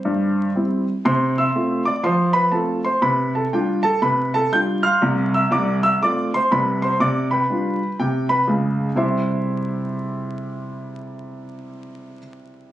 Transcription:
Already playing: G4 C5
0.05 G2
0.55 G3 C4 E4
1.05 C3 C5 C6
1.38 E5 C6 E6
1.55 A3 C4 F4
1.85 D5 D6
2.03 F3 C5 C6
2.33 B4 B5
2.51 A3 C4 F4 A4 A5
2.85 C5 C6
3.02 C3 B4 B5
3.35 A4 A5
3.53 G3 D4 F4 G4 G5
3.83 A4 A5
4.02 C3 B4 B5
4.34 A4 A5
4.52 G3 D4 F4 G5 G6
4.83 F5 C6 F6
5.02 C2 C3
5.34 E5 E6
5.50 C2 C3 D5 D6
5.83 E5 E6
6.02 A3 C4 F4 D5 D6
6.34 C5 C6
6.52 C2 C3 B4 B5
6.82 C5 C6
7.00 C3 D5 D6
7.31 B4 G5 B5
7.50 G3 D4 F4
7.99 C3 G4 G5
8.29 B4 B5
8.47 C#2 C#3
8.95 C3 G3 E4 G4 C5 E5 C6

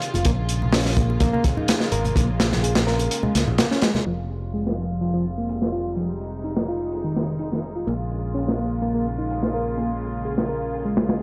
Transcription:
Already playing: C3 G3 G#3 F4
0.02 closed hi-hat
0.14 F1 F4, closed hi-hat, high bongo, high conga
0.25 A#1 C#3 G#3 A#3, kick, closed hi-hat
0.49 closed hi-hat
0.62 high conga
0.73 C#4, snare, open hi-hat
0.85 C#4, snare
0.97 A#3, kick, closed hi-hat, high conga
1.10 high bongo
1.20 A#1 A#3, kick, closed hi-hat
1.33 A#3, high conga
1.44 kick, closed hi-hat
1.57 D#4, low conga
1.68 snare, closed hi-hat, high conga
1.80 snare, high bongo
1.92 G#1 A#4, closed hi-hat
2.05 closed hi-hat, high conga
2.16 A#1 A#3, kick, closed hi-hat
2.40 snare, closed hi-hat, high bongo
2.52 snare, high conga, low conga
2.63 G#4, closed hi-hat
2.75 snare, closed hi-hat
2.87 A#4, snare
2.99 closed hi-hat, high bongo
3.11 closed hi-hat
3.23 G#3, high conga, low conga
3.34 C#2 A#3, snare, closed hi-hat
3.47 A#1, low conga
3.58 A#3, snare, closed hi-hat, high conga
3.71 C#4, snare
3.82 G#3, snare, closed hi-hat
3.94 G#3, snare, high bongo, high conga
4.06 F1 C3 F3 G3 G#3 F4, closed hi-hat
4.29 closed hi-hat
4.54 G#3, open hi-hat
4.67 G#3, snare
4.78 F3, closed hi-hat
5.01 F3, closed hi-hat
5.14 F3
5.25 closed hi-hat
5.38 A#3
5.49 closed hi-hat
5.62 snare
5.72 F4, closed hi-hat
5.86 closed hi-hat
5.96 F3 D#4, closed hi-hat
6.21 closed hi-hat
6.44 D#4, closed hi-hat
6.57 snare
6.68 F4, closed hi-hat
6.92 closed hi-hat
7.04 D#3
7.16 snare, closed hi-hat
7.39 D#4, closed hi-hat
7.52 D#3, snare
7.64 closed hi-hat
7.76 F4, closed hi-hat
7.87 A#1 C#3 A#3 F4, closed hi-hat
8.11 closed hi-hat
8.35 C#4, open hi-hat
8.47 C#4, snare
8.59 A#3, closed hi-hat
8.82 A#3, closed hi-hat
8.95 A#3
9.06 closed hi-hat
9.19 D#4
9.30 closed hi-hat
9.43 snare
9.53 A#4, closed hi-hat
9.67 closed hi-hat
9.77 A#3, closed hi-hat
10.02 closed hi-hat
10.25 G#4, closed hi-hat
10.38 snare
10.49 A#4, closed hi-hat
10.74 closed hi-hat
10.85 G#3
10.97 snare, open hi-hat
11.09 snare, open hi-hat

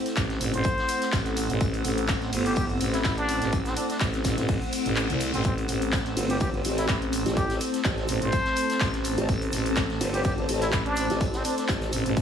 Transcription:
Already playing: A3 C4 E4 A4 C5 F#5
0.06 snare, closed hi-hat, shaker
0.16 A1, kick, snare, clap, ride, tambourine, shaker
0.30 snare, closed hi-hat
0.41 A1, open hi-hat, ride, tambourine, shaker
0.53 A1 C5, closed hi-hat, shaker
0.64 kick, ride, tambourine, shaker
0.78 snare, closed hi-hat
0.88 open hi-hat, ride, tambourine, shaker
1.01 snare, closed hi-hat, shaker
1.12 A1, kick, snare, clap, ride, tambourine, shaker
1.26 snare, closed hi-hat
1.37 open hi-hat, ride, tambourine, shaker
1.50 A1, closed hi-hat, shaker
1.61 A1, kick, ride, tambourine, shaker
1.74 closed hi-hat, shaker
1.84 A1, open hi-hat, ride, tambourine, shaker
1.97 closed hi-hat, shaker
2.08 kick, snare, clap, ride, tambourine, shaker
2.22 snare, closed hi-hat
2.33 G1, open hi-hat, ride, shaker
2.46 G4, closed hi-hat, shaker
2.56 G4, kick, ride, tambourine, shaker
2.70 closed hi-hat
2.81 A1, open hi-hat, ride, tambourine, shaker
2.94 E4, snare, closed hi-hat, shaker
3.04 A1 E4, kick, snare, clap, ride, tambourine, shaker
3.18 D4, closed hi-hat
3.29 open hi-hat, ride, tambourine, shaker
3.41 A1, snare, closed hi-hat, shaker
3.52 kick, ride, tambourine, shaker
3.65 C4, snare, closed hi-hat, shaker
3.77 D4, open hi-hat, ride, tambourine, shaker
3.89 D4, snare, closed hi-hat, shaker
4.00 A1, kick, snare, clap, ride, tambourine, shaker
4.13 snare, closed hi-hat, shaker
4.24 A1, kick, snare, open hi-hat, ride, tambourine, shaker
4.38 A1, snare, closed hi-hat, shaker
4.48 A1, kick, open hi-hat, ride, reverse cymbal, shaker
4.62 closed hi-hat, shaker
4.73 open hi-hat, ride, tambourine, shaker
4.85 A1, closed hi-hat, shaker
4.96 clap, ride, shaker
5.10 C2, closed hi-hat
5.20 snare, open hi-hat, ride, shaker
5.34 A1 C4, closed hi-hat, tambourine, shaker
5.45 A1 C4 A4, kick, ride, tambourine, shaker
5.58 closed hi-hat, shaker
5.68 A1, open hi-hat, ride, tambourine, shaker
5.76 A5
5.82 closed hi-hat, shaker
5.92 kick, snare, clap, ride, tambourine, shaker
6.06 snare, closed hi-hat
6.17 G1, open hi-hat, ride, shaker
6.30 G4, closed hi-hat, shaker
6.40 G4, kick, ride, tambourine, shaker
6.54 closed hi-hat
6.64 A1, open hi-hat, ride, tambourine, shaker
6.78 E4, snare, closed hi-hat, shaker
6.88 A1 E4, kick, snare, clap, ride, tambourine, shaker
7.02 closed hi-hat
7.13 open hi-hat, ride, tambourine, shaker
7.26 A1, snare, closed hi-hat, shaker
7.37 G4, kick, ride, tambourine, shaker
7.50 snare, closed hi-hat, shaker
7.61 open hi-hat, ride, tambourine, shaker
7.74 snare, closed hi-hat, shaker
7.84 A1, kick, snare, clap, ride, tambourine, shaker
7.98 snare, closed hi-hat
8.08 A1, open hi-hat, ride, tambourine, shaker
8.22 A1 C5, closed hi-hat, shaker
8.32 kick, ride, tambourine, shaker
8.46 snare, closed hi-hat
8.56 open hi-hat, ride, tambourine, shaker
8.70 snare, closed hi-hat, shaker
8.80 A1, kick, snare, clap, ride, tambourine, shaker
8.94 snare, closed hi-hat
9.04 open hi-hat, ride, tambourine, shaker
9.17 A1, closed hi-hat, shaker
9.28 A1, kick, ride, tambourine, shaker
9.42 closed hi-hat, shaker
9.52 A1, open hi-hat, ride, tambourine, shaker
9.66 closed hi-hat, shaker
9.76 kick, snare, clap, ride, tambourine, shaker
9.90 snare, closed hi-hat
10.01 G1, open hi-hat, ride, shaker
10.14 G4, closed hi-hat, shaker
10.24 G4, kick, ride, tambourine, shaker
10.38 closed hi-hat
10.49 A1, open hi-hat, ride, tambourine, shaker
10.61 E4, snare, closed hi-hat, shaker
10.72 A1 E4, kick, snare, clap, ride, tambourine, shaker
10.86 D4, closed hi-hat
10.96 open hi-hat, ride, tambourine, shaker
11.10 A1, snare, closed hi-hat, shaker
11.21 kick, ride, tambourine, shaker
11.33 C4, snare, closed hi-hat, shaker
11.44 D4, open hi-hat, ride, tambourine, shaker
11.57 D4, snare, closed hi-hat, shaker
11.68 A1, kick, snare, clap, ride, tambourine, shaker
11.81 snare, closed hi-hat, shaker
11.92 A1, open hi-hat, ride, tambourine, shaker
12.06 A1, closed hi-hat, shaker
12.17 A1, kick, ride, tambourine, shaker

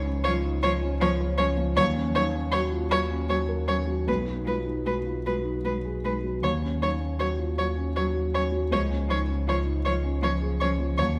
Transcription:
Already playing: C#2 C#4 D#4
0.05 C#4
0.24 F3 F4 C#5
0.45 D#4
0.63 F3 F4 C#5
0.82 C#4
1.01 F3 C#5
1.21 C#5
1.38 F3 C#4 C#5
1.57 F3
1.76 D#2 F#3 C#5
1.96 C#4
2.15 F#3 D#4 C#5
2.35 C#4
2.52 F#3 F#4 C#5
2.72 F4
2.89 F#3 F#4 C#5
3.10 C#4
3.29 F#3 C#5
3.48 A#4
3.67 F#3 C#4 C#5
3.87 F#3
4.07 B1 G#3 B4
4.27 D#4
4.45 G#3 F4 B4
4.66 D#4
4.85 G#3 F#4 B4
5.05 F4
5.25 G#3 F#4 B4
5.45 D#4
5.64 F#3 G#3 B4
5.85 G#4
6.04 G#3 D#4 B4
6.24 F#3
6.42 D#2 F#3 C#5
6.63 C#4
6.82 F#3 D#4 C#5
7.01 C#4
7.19 F#3 F#4 C#5
7.39 F4
7.57 F#3 F#4 C#5
7.77 C#4
7.96 F#3 C#5
8.14 F#4
8.34 F#3 C#4 C#5
8.52 F#3
8.71 C#2 F3 C#5
8.91 C#4
9.09 F3 D#4 C#5
9.28 C#4
9.47 F3 F4 C#5
9.66 D#4
9.85 F3 F4 C#5
10.04 C#4
10.22 F3 C#5
10.41 G#4
10.60 F3 C#4 C#5
10.79 F3
10.98 D#2 F#3 C#5

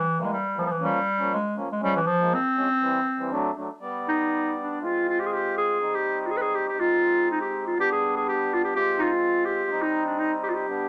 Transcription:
Already playing: E3
0.18 E3 G3 G#3 A#3
0.32 G3
0.54 E3 F3 G3 A#3
0.60 G3
0.66 F3
0.71 E3
0.79 F3 A#3 C#4
0.84 G3
1.18 F3 A#3 C#4
1.34 G#3
1.56 F3 A#3 C#4
1.71 G#3
1.80 F3 G3 G#3 C#4
1.96 E3
2.07 F3
2.19 F3 G#3 A#3
2.34 C4
2.55 F3 G#3 C#4
2.81 E3 G3 C4
3.18 E3 G3 C4
3.31 F#3 A3 D4
3.56 F#3 A3 D4
3.80 G3 B3 D5
4.08 D#4
4.59 D4
4.80 G#3 C4 F4
4.84 F4
5.08 F4
5.20 G4
5.26 G#4
5.33 G4
5.58 G#4
5.80 G3 C4 D#4
5.94 G4
6.21 G4
6.26 F4
6.30 G#4
6.37 B4
6.42 G#4
6.55 G4
6.68 G4
6.78 G#3 C4 D#4 F4
7.30 D#4
7.41 G4
7.67 F4
7.76 G3 B3 D4 G4
7.92 G#4
8.16 G#4
8.28 G4
8.53 F4
8.64 G4
8.74 G#3 C4 F4 G4
8.98 D#4 F4
9.05 D#4 F4
9.45 G4
9.70 G3 C4 D#4
9.82 D#4
10.06 D4
10.19 D#4
10.43 G4
10.49 F4
10.54 G4
10.68 G3 B3 D4

